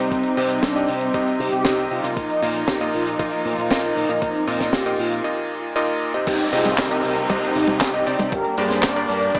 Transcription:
Already playing: G3 C4 D#4
0.00 C3 C4 D#4 G4 D#5
0.12 C2 C4, kick, closed hi-hat
0.23 closed hi-hat
0.37 C3 C4 D#4 G4 D#5, open hi-hat
0.50 closed hi-hat
0.63 C2 D4, kick, snare, closed hi-hat
0.75 C3 C4 D#4 G4 D#5, closed hi-hat
0.88 C3 C4, open hi-hat
1.01 closed hi-hat
1.14 C2 C3 C4 D#4 G4 D#5, kick, closed hi-hat
1.27 closed hi-hat
1.40 C3 G4, open hi-hat
1.52 C3, closed hi-hat
1.65 C2 C3 C4 D#4 G4 D#5, kick, snare, closed hi-hat
1.79 closed hi-hat
1.91 C3 F4, open hi-hat
2.04 A#2 C3 A#3 D#4 F4 D#5, closed hi-hat
2.17 A#1 F3 A#3 D#4, kick, closed hi-hat
2.30 closed hi-hat
2.42 A#2 A#3 D#4 F4 D#5, open hi-hat
2.56 closed hi-hat
2.68 A#1 G4, kick, snare, closed hi-hat
2.80 A#2 A#3 D#4 F4 D#5, closed hi-hat
2.94 A#2 F4, open hi-hat
3.07 closed hi-hat
3.19 A#1 A#2 A#3 D#4 F4 D#5, kick, closed hi-hat
3.32 closed hi-hat
3.45 A#2 F4, open hi-hat
3.58 A#2, closed hi-hat
3.71 A#1 A#2 A#3 D#4 F4 D#5, kick, snare, closed hi-hat
3.84 closed hi-hat
3.96 A#2 D#4, open hi-hat
4.09 A#2 A#3 D#4 F4 D#5, closed hi-hat
4.22 A#1 C4 D#4, kick, closed hi-hat
4.35 closed hi-hat
4.47 A#2 A#3 D#4 F4 D#5, open hi-hat
4.60 kick, snare, closed hi-hat
4.73 A#1 G4, kick, snare, closed hi-hat
4.86 A#2 A#3 D#4 F4 D#5, closed hi-hat
4.99 A#2 F4, open hi-hat
5.12 closed hi-hat
5.24 A#2 A#3 D#4 F4 D#5
5.76 A#2 A#3 D#4 F4 D#5
6.14 C3 C4 D#4 G4 D#5
6.27 C2 G3 C4 D#4 G4, kick, closed hi-hat, crash, downlifter, cabasa
6.40 closed hi-hat
6.53 C3 C4 D#4 F4 G4 G#4 D#5, open hi-hat, cabasa
6.65 closed hi-hat, high tom, cabasa
6.78 C2 G4 A#4, kick, snare, clap, closed hi-hat, cabasa
6.90 C3 C4 D#4 G4 D#5, closed hi-hat
7.03 C3, open hi-hat, cabasa
7.17 closed hi-hat, cabasa
7.29 C2 C3 C4 D#4 G4 C5 D#5, kick, closed hi-hat, high tom, cabasa
7.42 closed hi-hat
7.55 C3 D#4 G4, open hi-hat, cabasa
7.67 C3, closed hi-hat, high tom, cabasa
7.80 C2 D#4 G4, kick, snare, clap, closed hi-hat, cabasa
7.94 C3 C4 D#4 G4 D#5, closed hi-hat
8.06 C3 C4 D#4 G4 D5, open hi-hat, cabasa
8.19 C3, closed hi-hat, high tom, cabasa
8.32 G1 A#3 D4 G4 A#4, kick, closed hi-hat, cabasa
8.44 closed hi-hat
8.57 G2 A#3 D4 G4 G#4 C5 D5, open hi-hat, cabasa
8.70 snare, closed hi-hat, cabasa
8.82 G1 A#4 D5, kick, snare, clap, closed hi-hat, cabasa
8.96 G2 A#3 D4 G4 D5, closed hi-hat
9.08 G2, open hi-hat, cabasa
9.22 closed hi-hat, cabasa
9.35 G1 G2 A#3 D4 G4 A#4 D5 D#5, kick, closed hi-hat, cabasa

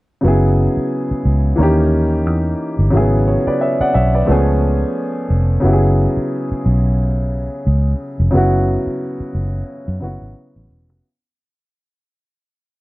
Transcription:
0.21 F#1 C#3 F#3 B3
0.26 E4 G#4
0.77 muted fingered electric bass stroke
1.11 muted fingered electric bass stroke
1.25 C#2
1.56 D#2 E3 A#3 C#4
1.61 D#4 G4
2.26 E2
2.79 G1
2.90 G#1 C#3 F#3 A3
2.95 E4 G#4
3.00 B3
3.28 C#5
3.47 B4 D5, muted fingered electric bass stroke
3.61 C#5 E5
3.81 D5 F#5, muted fingered electric bass stroke
3.94 B1 C#5 E5
4.14 B4 D5
4.25 C#2 F3 A3 B3
4.30 C#4 G#4
5.30 F1
5.60 F#1 C#3 F#3 B3
5.65 E4 G4
5.73 G#4
6.17 muted fingered electric bass stroke
6.52 muted fingered electric bass stroke
6.66 B1
7.67 C#2
8.20 F1
8.31 F#1 C#3 F#3 B3
8.35 E4 F#4
8.87 muted fingered electric bass stroke
9.20 muted fingered electric bass stroke
9.35 F#1
9.88 F#2
10.00 F#1 C#3 F#3 B3 E4 F#4
10.22 G#1
10.56 A1
10.70 E1
10.89 F1

